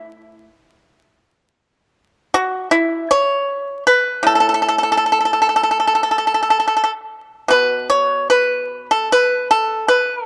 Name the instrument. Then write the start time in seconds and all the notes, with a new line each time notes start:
pipa
Already playing: A2
2.34 F#4
2.71 E4
3.11 C#5
3.87 B4
4.23 A2 A4
4.35 A4
4.40 A4
4.49 A4
4.54 A4
4.62 A4
4.69 A4
4.78 A4
4.83 A4
4.92 A4
4.97 A4
5.06 A4
5.12 A4
5.21 A4
5.25 A4
5.33 A4
5.42 A4
5.49 A4
5.56 A4
5.63 A4
5.71 A4
5.80 A4
5.87 A4
5.95 A4
6.03 A4
6.11 A4
6.18 A4
6.27 A4
6.34 A4
6.43 A4
6.50 A4
6.60 A4
6.68 A4
6.77 A4
6.84 A4
7.48 B2 B4
7.90 C#5
8.30 B4
8.91 A4
9.12 B4
9.51 A4
9.88 B4